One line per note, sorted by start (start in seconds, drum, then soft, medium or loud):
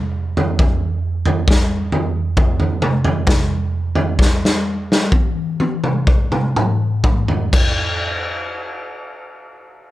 0.37 floor tom medium
0.59 kick loud
0.59 floor tom medium
1.26 floor tom medium
1.48 kick loud
1.48 snare medium
1.92 floor tom medium
2.37 kick loud
2.37 floor tom medium
2.60 floor tom medium
2.82 mid tom medium
3.05 floor tom medium
3.27 kick loud
3.27 snare medium
3.27 floor tom medium
3.27 mid tom medium
3.95 floor tom medium
4.19 kick loud
4.19 snare medium
4.45 snare medium
4.92 snare medium
5.12 kick loud
5.12 high tom medium
5.60 high tom medium
5.84 mid tom medium
6.07 kick loud
6.32 mid tom medium
6.56 mid tom medium
7.04 kick loud
7.04 mid tom medium
7.28 floor tom medium
7.53 kick loud
7.53 crash medium